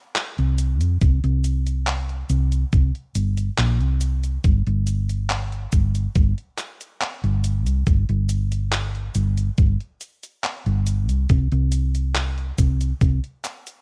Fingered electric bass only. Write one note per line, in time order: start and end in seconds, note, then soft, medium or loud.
0.39 0.81 C2 medium
0.81 0.96 F2 medium
1.02 1.19 C2 loud
1.24 2.22 C2 loud
2.30 2.63 C2 medium
2.73 2.90 C2 medium
3.15 3.49 G1 medium
3.58 3.81 A#1 medium
3.81 4.37 C2 medium
4.44 4.61 G1 loud
4.67 5.65 G1 loud
5.73 6.06 G1 medium
6.15 6.33 G1 medium
7.24 7.67 G1 medium
7.67 7.82 C2 medium
7.87 8.04 G1 loud
8.09 9.08 G1 loud
9.15 9.48 G1 medium
9.58 9.76 G1 medium
10.66 11.10 G1 medium
11.10 11.25 C2 medium
11.30 11.47 C2 loud
11.52 12.50 C2 loud
12.58 12.92 C2 medium
13.01 13.18 C2 medium